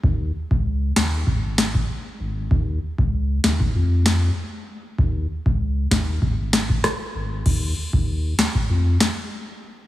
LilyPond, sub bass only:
\new Staff \with { instrumentName = "Sub bass" } { \clef bass \time 4/4 \key des \major \tempo 4 = 97 ees,8 r16 des,8. ees,8 aes,,4 r8 aes,,8 | ees,8 r16 des,8. ees,8 f,4 r4 | ees,8 r16 des,8. ees,8 aes,,4 r8 aes,,8 | ees,8 r16 ees,8. r8 f,8 r4. | }